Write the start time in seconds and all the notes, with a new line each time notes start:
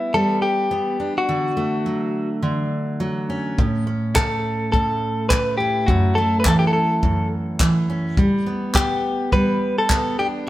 Already playing: G3 B3 E4
0.14 G3 A4
0.42 G4
0.71 B3
1.00 D4
1.18 F#4
1.29 D3
1.57 A3
1.86 F#3
2.42 D3
3.00 F#3
3.30 C#4
3.58 A2, kick
3.87 C#4
4.16 A3 A4, kick, clap
4.72 A2 A4, kick
5.29 A3 B4, kick, clap
5.58 E4 G4
5.86 F#2 F#4, kick
6.15 A3 A4
6.40 B4
6.45 E3 A4, kick, clap
6.59 G4
6.67 A4
6.73 A4
7.03 F#2, kick
7.60 E3, kick, clap
7.90 C#4
8.17 G3, kick
8.46 B3
8.74 B3 G4, kick, clap
9.32 G3 B4, kick
9.78 A4
9.90 B3, kick, clap
10.19 D4 G4